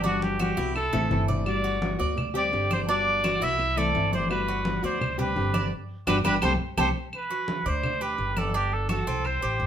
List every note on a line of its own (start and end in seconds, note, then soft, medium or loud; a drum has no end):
0.00 0.51 G1 loud
0.00 0.38 D4 medium
0.04 0.39 G3 medium
0.04 0.39 B3 medium
0.04 0.24 F#4 loud
0.04 0.40 F#4 medium
0.04 high conga loud
0.22 0.40 G4 medium
0.22 high conga medium
0.39 0.57 G3 soft
0.39 0.58 B3 medium
0.39 0.57 F#4 medium
0.39 0.56 F#4 medium
0.39 0.73 G4 medium
0.39 high conga loud
0.39 claves medium
0.57 0.91 C2 medium
0.57 0.75 B3 medium
0.57 0.92 E4 loud
0.57 0.74 F#4 medium
0.76 1.25 A4 loud
0.76 muted nylon-string guitar stroke medium
0.76 claves medium
0.93 1.10 A1 medium
0.93 1.09 E3 medium
0.93 1.10 A3 medium
0.93 1.10 C4 medium
0.93 1.10 E4 medium
0.93 1.27 A4 medium
0.93 low conga loud
1.10 1.94 G1 loud
1.10 1.45 E3 medium
1.10 1.45 A3 medium
1.10 1.46 C4 medium
1.10 1.46 E4 medium
1.10 low conga loud
1.28 1.63 D5 medium
1.28 low conga medium
1.46 1.80 G3 medium
1.46 1.81 B3 medium
1.46 1.82 F#4 medium
1.46 1.97 D5 loud
1.46 high conga soft
1.46 claves medium
1.64 1.99 F#4 medium
1.64 high conga soft
1.81 1.99 G3 soft
1.81 1.99 B3 medium
1.81 1.98 F#4 medium
1.81 high conga loud
1.99 2.49 D2 medium
1.99 2.17 B3 medium
1.99 2.16 F#4 medium
1.99 2.34 D5 medium
1.99 high conga soft
2.17 muted nylon-string guitar stroke medium
2.17 high conga soft
2.17 low conga medium
2.17 claves medium
2.34 2.52 G3 medium
2.34 2.52 C4 medium
2.34 2.52 G4 medium
2.34 2.70 G4 medium
2.34 2.69 D5 loud
2.34 high conga soft
2.52 3.36 G1 loud
2.52 2.87 D3 medium
2.52 2.86 G3 medium
2.52 2.88 C4 medium
2.52 2.88 G4 medium
2.52 high conga soft
2.71 2.80 C5 medium
2.71 2.88 D5 medium
2.71 high conga medium
2.71 claves medium
2.88 3.22 G3 medium
2.88 3.23 B3 medium
2.88 3.23 D4 loud
2.88 3.24 F#4 medium
2.88 3.45 D5 loud
2.88 high conga soft
3.06 high conga soft
3.23 3.41 G3 medium
3.23 3.41 B3 medium
3.23 3.41 F#4 medium
3.23 3.39 F#4 medium
3.23 high conga loud
3.23 claves medium
3.41 3.91 C2 loud
3.41 3.59 B3 medium
3.41 3.76 E4 medium
3.41 3.58 F#4 medium
3.41 3.79 E5 loud
3.59 muted nylon-string guitar stroke medium
3.59 high conga soft
3.59 claves medium
3.76 3.93 E3 medium
3.76 3.93 A3 medium
3.76 3.94 C4 medium
3.76 3.94 E4 medium
3.76 4.12 A4 medium
3.76 4.13 D5 loud
3.76 high conga soft
3.94 4.78 G1 loud
3.94 4.29 E3 medium
3.94 4.29 A3 medium
3.94 4.30 C4 medium
3.94 4.30 E4 medium
3.94 high conga soft
4.13 4.30 C5 loud
4.13 4.47 D5 medium
4.13 high conga medium
4.29 4.64 G3 medium
4.29 4.65 B3 medium
4.29 4.65 F#4 medium
4.29 4.80 B4 loud
4.29 high conga soft
4.29 claves medium
4.48 4.82 F#4 medium
4.48 high conga soft
4.65 4.83 G3 medium
4.65 4.83 B3 medium
4.65 4.82 F#4 medium
4.65 high conga loud
4.83 5.33 D2 loud
4.83 5.01 B3 medium
4.83 5.00 F#4 medium
4.83 5.17 C5 loud
4.83 5.18 D5 medium
5.00 muted nylon-string guitar stroke medium
5.00 high conga soft
5.00 low conga medium
5.00 claves medium
5.18 5.35 G3 medium
5.18 5.36 C4 medium
5.18 5.35 G4 medium
5.18 5.53 G4 medium
5.18 5.69 B4 loud
5.18 high conga soft
5.18 low conga medium
5.35 5.69 G1 loud
5.35 5.71 D3 medium
5.35 5.71 G3 medium
5.35 5.71 C4 medium
5.35 5.72 G4 medium
5.35 high conga soft
5.54 5.71 D5 medium
5.54 high conga medium
5.54 claves medium
6.07 6.20 G1 medium
6.07 6.19 G3 loud
6.07 6.18 B3 loud
6.07 6.18 D4 loud
6.07 6.18 F#4 loud
6.07 6.18 G4 medium
6.07 6.18 B4 medium
6.07 6.16 B4 loud
6.07 high conga loud
6.07 claves loud
6.24 6.38 G1 loud
6.24 6.36 G3 loud
6.24 6.36 B3 loud
6.24 6.36 D4 loud
6.24 6.36 F#4 medium
6.24 6.36 G4 loud
6.24 6.36 B4 loud
6.24 6.34 B4 loud
6.24 high conga loud
6.24 claves loud
6.42 6.55 C2 loud
6.42 6.54 G3 loud
6.42 6.54 A3 loud
6.42 6.54 C4 loud
6.42 6.54 G4 medium
6.42 6.54 A4 medium
6.42 6.54 C5 medium
6.42 6.52 C5 loud
6.42 high conga loud
6.42 claves loud
6.77 6.91 C2 loud
6.77 6.89 G3 loud
6.77 6.89 A3 loud
6.77 6.89 C4 loud
6.77 6.89 G4 loud
6.77 6.89 A4 loud
6.77 6.89 C5 loud
6.77 6.87 C5 loud
6.77 high conga loud
6.77 claves loud
7.13 7.69 B4 loud
7.13 high conga soft
7.13 claves medium
7.30 7.65 F#4 medium
7.30 high conga soft
7.48 high conga loud
7.66 8.15 D2 loud
7.66 8.04 C5 loud
7.66 8.00 D5 medium
7.66 high conga soft
7.83 high conga soft
7.83 low conga medium
7.83 claves medium
8.01 8.35 G4 medium
8.01 8.39 B4 loud
8.01 high conga soft
8.18 9.01 G1 loud
8.18 high conga soft
8.37 8.57 A4 medium
8.37 8.54 D5 medium
8.37 high conga medium
8.37 claves medium
8.54 8.88 D4 medium
8.54 8.75 G4 loud
8.54 high conga soft
8.72 8.90 A4 medium
8.72 high conga soft
8.89 9.06 F#4 medium
8.89 9.27 A4 loud
8.89 high conga loud
8.89 claves medium
9.07 9.40 C2 medium
9.07 9.41 C4 medium
9.24 9.67 C5 loud
9.24 high conga soft
9.24 claves medium
9.42 9.59 A1 medium
9.42 9.67 G4 medium
9.42 high conga soft
9.60 9.67 G1 loud
9.60 high conga soft